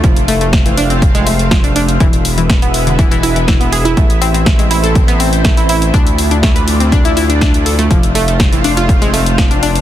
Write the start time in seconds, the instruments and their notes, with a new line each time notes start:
Already playing: analog synth pad F4
0.04 analog synth bass F1, synth arpeggio sound F3, analog synth pad A3 C4 C5 F5, kick, closed hi-hat
0.16 closed hi-hat
0.28 synth arpeggio sound A3, open hi-hat
0.41 synth arpeggio sound A3, closed hi-hat
0.53 kick, snare, closed hi-hat
0.66 synth arpeggio sound E3, closed hi-hat
0.78 synth arpeggio sound D4, open hi-hat
0.90 synth arpeggio sound C4, closed hi-hat
1.02 kick, closed hi-hat
1.15 synth arpeggio sound G#3, closed hi-hat
1.27 synth arpeggio sound A3, open hi-hat
1.39 closed hi-hat
1.51 synth arpeggio sound F3, kick, snare, closed hi-hat
1.64 synth arpeggio sound D4, closed hi-hat
1.76 synth arpeggio sound D4, open hi-hat
1.89 closed hi-hat
2.00 analog synth bass E1, synth arpeggio sound E3, analog synth pad G#3 B3 E4 B4 E5, kick, closed hi-hat
2.13 closed hi-hat
2.25 open hi-hat
2.38 synth arpeggio sound E3, closed hi-hat
2.50 synth arpeggio sound B2, kick, snare, closed hi-hat
2.62 synth arpeggio sound B3, closed hi-hat
2.74 open hi-hat
2.87 synth arpeggio sound D3, closed hi-hat
2.99 synth arpeggio sound E3, kick, closed hi-hat
3.11 synth arpeggio sound E3, closed hi-hat
3.23 synth arpeggio sound E4, open hi-hat
3.36 synth arpeggio sound E3, closed hi-hat
3.48 synth arpeggio sound E3, kick, snare, closed hi-hat
3.60 synth arpeggio sound B3, closed hi-hat
3.72 synth arpeggio sound G#4, open hi-hat
3.85 synth arpeggio sound E4, closed hi-hat
3.97 analog synth bass A1, synth arpeggio sound A3, analog synth pad A3 C4 C5, kick, closed hi-hat
4.10 closed hi-hat
4.21 synth arpeggio sound C4, open hi-hat
4.34 synth arpeggio sound C4, closed hi-hat
4.46 kick, snare, closed hi-hat
4.59 synth arpeggio sound G#3, closed hi-hat
4.71 synth arpeggio sound E4, open hi-hat
4.84 synth arpeggio sound A4, closed hi-hat
4.95 kick, closed hi-hat
5.08 synth arpeggio sound B3, closed hi-hat
5.20 synth arpeggio sound C4, open hi-hat
5.33 closed hi-hat
5.45 synth arpeggio sound A3, kick, snare, closed hi-hat
5.57 synth arpeggio sound E4, closed hi-hat
5.69 synth arpeggio sound E4, open hi-hat
5.82 closed hi-hat
5.94 analog synth bass D2, analog synth pad A3 D4 F4 D5, synth arpeggio sound D4, kick, closed hi-hat
6.07 closed hi-hat
6.18 open hi-hat
6.31 synth arpeggio sound D4, closed hi-hat
6.43 synth arpeggio sound A3, kick, snare, closed hi-hat
6.56 synth arpeggio sound B4, closed hi-hat
6.68 open hi-hat
6.80 synth arpeggio sound C4, closed hi-hat
6.92 synth arpeggio sound D4, kick, closed hi-hat
7.05 synth arpeggio sound E4, closed hi-hat
7.17 synth arpeggio sound E4, open hi-hat
7.29 synth arpeggio sound D4, closed hi-hat
7.41 synth arpeggio sound D4, kick, snare, closed hi-hat
7.54 closed hi-hat
7.66 synth arpeggio sound A4, open hi-hat
7.79 synth arpeggio sound A3, closed hi-hat
7.91 analog synth bass F1, synth arpeggio sound F3, analog synth pad A3 C4 F4 C5 F5, kick, closed hi-hat
8.03 closed hi-hat
8.15 synth arpeggio sound A3, open hi-hat
8.28 synth arpeggio sound A3, closed hi-hat
8.40 kick, snare, closed hi-hat
8.53 synth arpeggio sound E3, closed hi-hat
8.64 synth arpeggio sound D4, open hi-hat
8.77 synth arpeggio sound F4, closed hi-hat
8.89 kick, closed hi-hat
9.02 synth arpeggio sound G#3, closed hi-hat
9.14 synth arpeggio sound A3, open hi-hat
9.26 closed hi-hat
9.38 synth arpeggio sound F3, kick, snare, closed hi-hat
9.51 synth arpeggio sound D4, closed hi-hat
9.63 synth arpeggio sound D4, open hi-hat
9.76 closed hi-hat